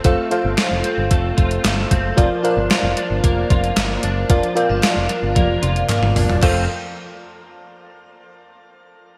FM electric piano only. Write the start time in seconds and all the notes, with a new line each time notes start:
Already playing: F4 A4 C5 E5 F5
0.04 F4 A4 C5 F5
0.31 F4 A4 C5 F5
2.17 F4 A#4 D5 F5
2.43 F4 A#4 C5 F5
2.50 D5
4.30 F4 A#4 D5 F5
4.55 F4 A#4 D5 F5
6.43 F2 F4 A4 C5 F5